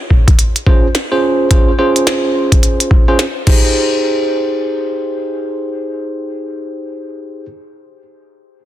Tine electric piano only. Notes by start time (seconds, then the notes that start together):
0.67 C#4 F4 G#4 C5
1.12 C#4 F4 G#4 C5
1.51 C#4 F4 G#4 C5
1.79 C#4 F4 G#4 C5
3.08 C#4 F4 G#4 C5
3.47 D#4 G4 G#4 C5